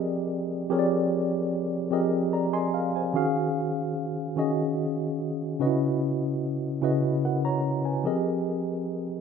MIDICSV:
0, 0, Header, 1, 2, 480
1, 0, Start_track
1, 0, Tempo, 816327
1, 407, Time_signature, 6, 3, 24, 8
1, 5415, End_track
2, 0, Start_track
2, 0, Title_t, "Tine electric piano"
2, 0, Program_c, 0, 4
2, 0, Control_c, 0, 64, 127
2, 0, Note_on_c, 0, 53, 67
2, 0, Note_on_c, 0, 60, 67
2, 0, Note_on_c, 0, 67, 73
2, 0, Note_on_c, 0, 68, 71
2, 0, Note_on_c, 0, 70, 64
2, 0, Note_on_c, 0, 74, 71
2, 0, Note_on_c, 0, 75, 78
2, 231, Note_off_c, 0, 53, 0
2, 234, Note_off_c, 0, 60, 0
2, 234, Note_off_c, 0, 67, 0
2, 236, Note_off_c, 0, 68, 0
2, 237, Note_off_c, 0, 70, 0
2, 258, Note_off_c, 0, 75, 0
2, 410, Note_on_c, 0, 53, 85
2, 412, Note_on_c, 0, 60, 75
2, 412, Note_on_c, 0, 67, 82
2, 418, Note_on_c, 0, 68, 70
2, 420, Note_on_c, 0, 70, 77
2, 422, Note_on_c, 0, 73, 73
2, 453, Note_off_c, 0, 73, 0
2, 464, Note_off_c, 0, 74, 0
2, 464, Note_on_c, 0, 74, 86
2, 952, Note_off_c, 0, 53, 0
2, 953, Note_off_c, 0, 67, 0
2, 954, Note_off_c, 0, 60, 0
2, 956, Note_off_c, 0, 68, 0
2, 957, Note_off_c, 0, 70, 0
2, 979, Note_off_c, 0, 74, 0
2, 1120, Note_on_c, 0, 53, 77
2, 1122, Note_on_c, 0, 60, 68
2, 1128, Note_on_c, 0, 67, 71
2, 1132, Note_on_c, 0, 68, 70
2, 1133, Note_on_c, 0, 70, 72
2, 1135, Note_on_c, 0, 75, 80
2, 1371, Note_off_c, 0, 75, 0
2, 1371, Note_on_c, 0, 82, 66
2, 1374, Note_on_c, 0, 74, 48
2, 1481, Note_off_c, 0, 82, 0
2, 1485, Note_off_c, 0, 74, 0
2, 1489, Note_on_c, 0, 80, 74
2, 1491, Note_on_c, 0, 84, 77
2, 1492, Note_on_c, 0, 75, 65
2, 1600, Note_off_c, 0, 80, 0
2, 1612, Note_on_c, 0, 77, 76
2, 1668, Note_off_c, 0, 53, 0
2, 1669, Note_off_c, 0, 60, 0
2, 1671, Note_off_c, 0, 67, 0
2, 1673, Note_off_c, 0, 68, 0
2, 1674, Note_off_c, 0, 70, 0
2, 1717, Note_off_c, 0, 84, 0
2, 1718, Note_off_c, 0, 75, 0
2, 1739, Note_on_c, 0, 80, 53
2, 1742, Note_on_c, 0, 72, 56
2, 1833, Note_off_c, 0, 77, 0
2, 1843, Note_on_c, 0, 51, 87
2, 1847, Note_on_c, 0, 61, 69
2, 1854, Control_c, 0, 64, 0
2, 1854, Note_on_c, 0, 66, 81
2, 1857, Note_on_c, 0, 68, 80
2, 1861, Note_on_c, 0, 77, 97
2, 1954, Control_c, 0, 64, 127
2, 1961, Note_off_c, 0, 80, 0
2, 1963, Note_off_c, 0, 72, 0
2, 2389, Note_off_c, 0, 51, 0
2, 2391, Note_off_c, 0, 61, 0
2, 2394, Note_off_c, 0, 66, 0
2, 2396, Note_off_c, 0, 68, 0
2, 2398, Note_off_c, 0, 77, 0
2, 2565, Note_on_c, 0, 51, 79
2, 2568, Note_on_c, 0, 61, 72
2, 2572, Note_on_c, 0, 66, 73
2, 2578, Note_on_c, 0, 68, 72
2, 2582, Note_on_c, 0, 75, 91
2, 3110, Note_off_c, 0, 51, 0
2, 3112, Note_off_c, 0, 61, 0
2, 3114, Note_off_c, 0, 66, 0
2, 3116, Note_off_c, 0, 68, 0
2, 3118, Note_off_c, 0, 75, 0
2, 3289, Note_on_c, 0, 49, 73
2, 3292, Note_on_c, 0, 61, 73
2, 3294, Control_c, 0, 64, 0
2, 3295, Note_on_c, 0, 63, 52
2, 3296, Note_on_c, 0, 66, 68
2, 3300, Note_on_c, 0, 71, 73
2, 3306, Note_on_c, 0, 75, 79
2, 3329, Note_off_c, 0, 63, 0
2, 3335, Note_on_c, 0, 64, 82
2, 3388, Control_c, 0, 64, 127
2, 3832, Note_off_c, 0, 49, 0
2, 3834, Note_off_c, 0, 61, 0
2, 3836, Note_off_c, 0, 66, 0
2, 3838, Note_off_c, 0, 71, 0
2, 3840, Note_off_c, 0, 75, 0
2, 3855, Note_off_c, 0, 64, 0
2, 4007, Note_on_c, 0, 49, 76
2, 4007, Note_on_c, 0, 61, 68
2, 4010, Note_on_c, 0, 64, 71
2, 4016, Note_on_c, 0, 66, 61
2, 4021, Note_on_c, 0, 71, 70
2, 4025, Note_on_c, 0, 75, 81
2, 4254, Note_off_c, 0, 71, 0
2, 4256, Note_off_c, 0, 75, 0
2, 4263, Note_on_c, 0, 70, 45
2, 4263, Note_on_c, 0, 78, 54
2, 4369, Note_off_c, 0, 70, 0
2, 4370, Note_off_c, 0, 78, 0
2, 4380, Note_on_c, 0, 82, 79
2, 4381, Note_on_c, 0, 73, 69
2, 4551, Note_off_c, 0, 49, 0
2, 4551, Note_off_c, 0, 61, 0
2, 4552, Note_off_c, 0, 64, 0
2, 4555, Note_off_c, 0, 66, 0
2, 4602, Note_off_c, 0, 82, 0
2, 4603, Note_off_c, 0, 73, 0
2, 4618, Note_on_c, 0, 80, 57
2, 4623, Note_on_c, 0, 71, 48
2, 4726, Note_on_c, 0, 53, 72
2, 4734, Control_c, 0, 64, 0
2, 4734, Note_on_c, 0, 60, 62
2, 4735, Note_on_c, 0, 67, 69
2, 4739, Note_on_c, 0, 68, 68
2, 4741, Note_on_c, 0, 70, 66
2, 4744, Note_on_c, 0, 75, 76
2, 4841, Note_off_c, 0, 80, 0
2, 4843, Note_off_c, 0, 71, 0
2, 4854, Control_c, 0, 64, 127
2, 5270, Note_off_c, 0, 53, 0
2, 5274, Note_off_c, 0, 60, 0
2, 5275, Note_off_c, 0, 67, 0
2, 5277, Note_off_c, 0, 68, 0
2, 5278, Note_off_c, 0, 70, 0
2, 5280, Note_off_c, 0, 75, 0
2, 5415, End_track
0, 0, End_of_file